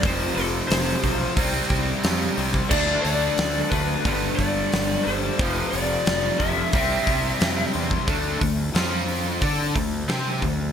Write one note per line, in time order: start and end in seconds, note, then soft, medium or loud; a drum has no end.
0.02 0.26 F1 loud
0.02 1.01 F2 loud
0.02 1.02 C3 loud
0.02 1.02 F3 loud
0.02 0.34 C5 loud
0.02 kick loud
0.02 open hi-hat medium
0.35 0.60 F1 medium
0.35 0.45 A4 medium
0.35 open hi-hat medium
0.68 0.93 F1 medium
0.68 1.32 C5 medium
0.68 snare loud
0.68 open hi-hat medium
1.03 1.27 B1 medium
1.03 1.36 F2 medium
1.03 1.35 C3 medium
1.03 1.35 F3 medium
1.03 kick medium
1.03 open hi-hat medium
1.36 1.60 C2 loud
1.36 2.35 C3 medium
1.36 2.36 G3 loud
1.36 2.36 C4 loud
1.36 kick loud
1.36 open hi-hat medium
1.70 1.93 C2 medium
1.70 kick medium
1.70 open hi-hat medium
2.03 2.27 F2 loud
2.03 snare loud
2.03 open hi-hat loud
2.37 2.60 C2 medium
2.37 2.69 C3 medium
2.37 2.69 G3 medium
2.37 2.69 C4 medium
2.37 open hi-hat medium
2.54 kick medium
2.70 2.94 D2 loud
2.70 3.69 D3 loud
2.70 3.69 A3 loud
2.70 3.69 D4 loud
2.70 3.01 D5 loud
2.70 kick loud
2.70 crash loud
3.03 3.28 D2 medium
3.03 3.72 D5 medium
3.03 open hi-hat medium
3.38 3.61 D2 loud
3.38 snare loud
3.38 open hi-hat medium
3.70 3.94 D2 medium
3.70 4.04 D3 medium
3.70 4.03 A3 medium
3.70 4.02 D4 medium
3.70 4.33 B4 loud
3.70 kick medium
3.70 open hi-hat medium
4.03 4.28 G1 loud
4.03 5.03 G2 medium
4.03 5.04 D3 loud
4.03 5.03 G3 loud
4.03 kick loud
4.03 open hi-hat medium
4.36 4.61 G1 medium
4.36 5.06 D5 loud
4.36 kick medium
4.36 open hi-hat medium
4.72 4.96 G1 medium
4.72 snare loud
4.72 open hi-hat medium
5.03 5.29 G1 medium
5.03 5.37 D3 medium
5.03 5.37 G3 medium
5.03 5.52 C5 medium
5.03 open hi-hat medium
5.07 5.38 G2 medium
5.39 5.62 F1 loud
5.39 6.37 F2 loud
5.39 6.38 C3 loud
5.39 6.38 F3 loud
5.39 kick loud
5.39 open hi-hat medium
5.52 5.73 B4 medium
5.71 5.96 F1 medium
5.71 6.35 D5 loud
5.71 open hi-hat medium
6.06 6.30 F1 medium
6.06 snare loud
6.06 open hi-hat medium
6.39 6.63 F1 medium
6.39 6.72 F2 medium
6.39 6.71 C3 medium
6.39 6.71 F3 medium
6.39 7.70 E5 loud
6.39 kick medium
6.39 open hi-hat medium
6.73 6.96 C2 medium
6.73 7.72 C3 loud
6.73 7.72 G3 loud
6.73 7.72 C4 loud
6.73 kick loud
6.73 open hi-hat medium
7.07 7.30 C2 medium
7.07 kick medium
7.07 open hi-hat medium
7.41 7.64 F2 loud
7.41 snare loud
7.41 open hi-hat medium
7.73 7.98 E2 medium
7.73 8.06 C3 medium
7.73 8.06 G3 medium
7.73 8.05 C4 medium
7.73 open hi-hat medium
7.91 kick medium
8.07 8.39 D2 medium
8.07 8.40 D3 medium
8.07 8.40 A3 medium
8.07 8.40 D4 loud
8.07 kick loud
8.07 open hi-hat medium
8.41 8.72 D2 medium
8.41 8.68 D3 medium
8.41 8.68 A3 medium
8.41 kick medium
8.41 open hi-hat medium
8.74 9.38 F2 loud
8.74 9.40 F3 loud
8.74 9.41 C4 loud
8.74 9.41 F4 loud
8.74 snare loud
8.74 open hi-hat medium
9.08 open hi-hat medium
9.41 9.73 D3 loud
9.41 9.74 D4 loud
9.41 9.74 A4 medium
9.41 9.75 D5 loud
9.41 kick loud
9.41 open hi-hat medium
9.75 10.07 D2 medium
9.75 10.02 D3 medium
9.75 10.02 A3 medium
9.75 kick medium
9.75 open hi-hat medium
10.08 10.40 C3 loud
10.08 10.41 C4 medium
10.08 10.42 G4 loud
10.08 10.42 C5 medium
10.08 snare loud
10.08 open hi-hat medium
10.42 10.72 D2 medium
10.42 10.69 D3 medium
10.42 10.70 A3 medium
10.42 kick medium
10.42 open hi-hat medium